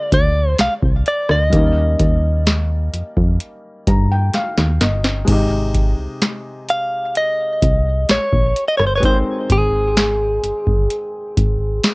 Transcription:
0.00 1.53 D3 medium
0.00 1.47 G#3 medium
0.00 1.48 A#3 medium
0.00 1.50 F4 medium
0.00 1.51 A#4 medium
0.00 0.13 D5 loud
0.00 0.03 D#5 loud
0.12 0.55 D2 loud
0.12 0.57 D5 loud
0.12 kick loud
0.12 closed hi-hat medium
0.58 0.69 C2 medium
0.58 0.73 F5 loud
0.58 snare loud
0.58 closed hi-hat medium
0.82 1.04 C2 medium
0.82 kick loud
1.06 1.31 D5 medium
1.06 closed hi-hat medium
1.29 1.51 D2 medium
1.29 4.78 D#5 medium
1.29 cross-stick medium
1.50 1.96 D#2 loud
1.50 5.22 G3 medium
1.50 5.23 A#3 medium
1.50 5.24 C#4 medium
1.50 kick loud
1.50 closed hi-hat medium
1.56 5.25 D#4 medium
1.56 5.26 A#4 medium
1.99 2.89 D#2 loud
1.99 kick medium
1.99 closed hi-hat medium
2.47 snare loud
2.47 closed hi-hat medium
2.94 3.03 F2 soft
2.94 closed hi-hat medium
3.17 3.38 F2 medium
3.17 kick medium
3.40 closed hi-hat medium
3.87 4.30 G2 medium
3.87 4.09 A#5 medium
3.87 kick loud
3.87 closed hi-hat medium
4.12 4.33 G5 medium
4.33 4.78 F5 medium
4.33 snare medium
4.33 closed hi-hat medium
4.57 4.79 D#2 medium
4.57 snare medium
4.81 5.24 G1 loud
4.81 5.25 D#5 medium
4.81 snare medium
4.81 closed hi-hat medium
5.04 snare loud
5.25 5.94 G#1 loud
5.25 8.98 C3 medium
5.25 8.97 G#3 medium
5.25 8.99 D#4 medium
5.25 kick loud
5.25 closed hi-hat medium
5.25 crash loud
5.30 9.00 G4 medium
5.30 9.01 D#5 medium
5.75 kick loud
5.75 closed hi-hat medium
5.98 6.08 C2 soft
6.22 snare loud
6.22 closed hi-hat medium
6.69 7.17 F5 loud
6.69 closed hi-hat medium
7.15 8.11 D#5 loud
7.15 closed hi-hat medium
7.62 8.05 C2 medium
7.62 kick loud
7.62 closed hi-hat medium
8.09 8.19 A#1 soft
8.09 8.64 C#5 loud
8.09 snare loud
8.09 closed hi-hat medium
8.33 8.54 A#1 medium
8.33 kick loud
8.56 closed hi-hat medium
8.68 8.76 D#5 medium
8.77 9.01 G1 medium
8.77 8.86 C#5 medium
8.77 cross-stick medium
8.87 8.95 C5 medium
8.95 9.04 B4 medium
8.95 9.04 C#5 medium
9.00 11.94 G#3 medium
9.00 11.94 C4 medium
9.00 11.94 D#4 medium
9.00 kick loud
9.00 closed hi-hat medium
9.05 9.12 A#4 medium
9.05 9.18 C5 loud
9.05 11.94 G5 medium
9.14 11.94 C5 medium
9.50 10.40 G#1 loud
9.50 11.94 G#4 medium
9.50 kick loud
9.50 closed hi-hat medium
9.97 snare loud
9.97 closed hi-hat medium
10.44 10.53 G1 soft
10.44 closed hi-hat medium
10.67 10.88 G1 medium
10.67 kick loud
10.90 closed hi-hat medium
11.37 11.80 G#1 loud
11.37 kick loud
11.37 closed hi-hat medium
11.84 snare loud
11.84 closed hi-hat medium

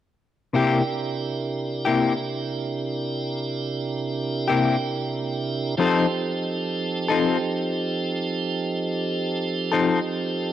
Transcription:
0.53 0.80 C3 medium
0.53 5.75 C3 soft
0.53 0.80 A#3 medium
0.53 5.75 D4 soft
0.53 5.75 E4 soft
0.53 0.81 E4 medium
0.53 5.75 G4 soft
0.53 0.81 G4 medium
0.53 5.75 A#4 soft
1.85 2.13 C3 soft
1.85 2.13 A#3 soft
1.85 2.12 E4 soft
1.85 2.12 G4 medium
4.48 4.75 C3 soft
4.48 4.75 A#3 soft
4.48 4.75 E4 medium
4.48 4.74 G4 medium
5.77 10.53 F3 soft
5.77 6.05 F3 medium
5.77 10.53 C4 soft
5.77 6.06 C4 medium
5.77 10.53 D#4 medium
5.77 6.06 D#4 medium
5.77 10.53 G4 soft
5.77 10.53 A4 soft
5.77 6.06 A4 medium
7.08 7.37 F3 soft
7.08 7.37 C4 soft
7.08 7.36 D#4 medium
7.08 7.36 A4 medium
9.72 9.99 F3 soft
9.72 9.99 C4 medium
9.72 9.99 D#4 medium
9.72 9.98 A4 medium

